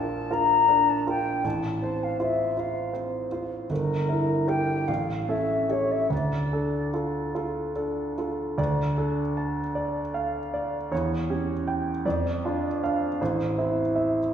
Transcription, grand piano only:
Already playing: A#1 D4 F4 A#4
0.31 F4 A#4
0.69 D4 A#4
1.07 F4 A#4
1.44 A1
1.82 C4 C5
2.20 F4 C5
2.57 F4 C5
2.93 C4 C5
3.32 F4 C5
3.70 G1
4.09 E4 A#4
4.48 G4 A#4
4.88 A1
5.29 C#4 A4
5.69 G4 A4
6.10 D2
6.53 D4 A4
6.94 F4 A4
7.35 F4 A4
7.76 D4 A4
8.18 F4 A4
8.58 D2 D5
8.98 D4 A4
9.37 A5
9.75 D5
10.14 F5
10.54 D5
10.92 E2 C#5
11.30 C#4 G4
11.68 G5
12.05 F2 D5
12.45 D4 F4
12.84 D4 F5
13.21 A1 C5
13.58 C4 E4
13.96 E5

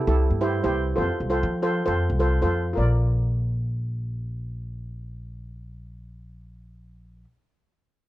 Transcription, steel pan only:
0.07 E4 G4 A4
0.41 E4 G4 C5
0.64 E4 G4 C5
0.96 F4 A4 C5
1.30 F4 A4 C5
1.62 F4 A4 C5
1.86 F4 A4 C5
2.20 F4 A4 C5
2.42 F4 A4 C5
2.73 F4 A#4
2.78 D5

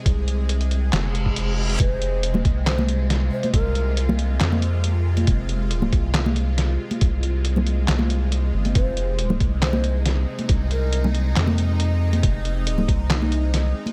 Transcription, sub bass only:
0.06 C2
0.93 F1
1.80 F1
2.25 E1
2.45 C2
3.53 C2
4.40 F2
5.27 F1
5.93 C2
7.01 C2
7.88 C2
8.54 G1
8.75 F1
9.40 C2
10.49 C2
11.36 F2
12.23 F1
12.88 C2

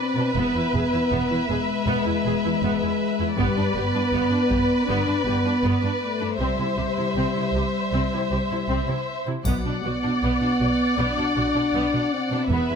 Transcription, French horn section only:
Already playing: C4
0.35 B3
1.49 G#3
3.37 G3
3.74 B3
4.86 D4
5.22 B3
6.01 A3
6.38 G3
9.44 F#3
9.83 B3
10.97 D4
12.12 C4
12.48 B3

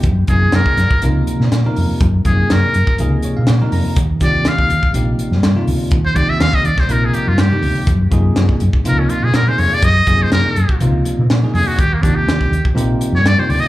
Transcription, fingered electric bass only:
0.04 F#2
0.28 F#2
0.52 F#2
0.77 F#2
0.91 muted fingered electric bass stroke
1.02 C#2
1.40 C3
1.52 A#2
1.77 F2
1.90 muted fingered electric bass stroke
2.01 F#2
2.26 F#2
2.51 F#2
2.75 F#2
3.00 C#2
3.24 muted fingered electric bass stroke
3.38 C3
3.49 A#2
3.72 F2
3.86 muted fingered electric bass stroke
3.97 D#2
4.21 D#2
4.45 D#2
4.69 D#2
4.83 muted fingered electric bass stroke
4.94 A#1
5.18 muted fingered electric bass stroke
5.31 G2
5.42 G2
5.67 D2
5.92 D#2
6.16 D#2
6.41 D#2
6.64 D#2
6.88 A#1
7.14 muted fingered electric bass stroke
7.27 G2
7.38 G2
7.62 D2
7.76 muted fingered electric bass stroke
7.87 F#2
8.12 F#2
8.36 F#2
8.62 F#2
8.73 muted fingered electric bass stroke
8.86 C#2
9.10 muted fingered electric bass stroke
9.23 C3
9.34 A#2
9.58 F2
9.72 muted fingered electric bass stroke
9.83 F#2
10.07 F#2
10.32 F#2
10.56 F#2
10.81 C#2
11.06 muted fingered electric bass stroke
11.19 C3
11.30 A#2
11.54 F2
11.67 muted fingered electric bass stroke
11.79 D#2
12.03 D#2
12.27 D#2
12.51 D#2
12.75 A#1
13.00 muted fingered electric bass stroke
13.12 G2
13.24 G2
13.49 D2

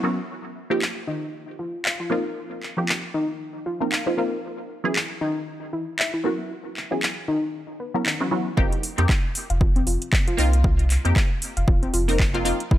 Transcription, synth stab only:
0.03 F#3 B3 C#4 E4 F#4
0.70 F3 A#3 C4 D#4 G4
2.10 F3 A#3 C4 D#4 F4
2.77 F3 A#3 C4 D#4 G4
3.80 F3 A#3 C4 D#4 A#4
4.06 F3 A#3 C4 D#4 F4
4.17 F3 A#3 C4 D#4 F4
4.84 F#3 B3 C#4 E4 G#4
6.24 F#3 B3 C#4 E4 F#4
6.91 F#3 B3 C#4 E4 G#4
7.94 F#3 B3 C#4 E4 A#4
8.20 F#3 B3 C#4 E4 F#4
8.31 F#3 B3 C#4 E4 F#4
8.57 A#3 C4 D#4 G4
8.98 A#3 C4 D#4 G4
10.37 A#3 C4 D#4 F4
11.05 A#3 C4 D#4 G4
12.08 A#3 C4 D#4 A#4
12.34 A#3 C4 D#4 F4
12.45 A#3 C4 D#4 F4

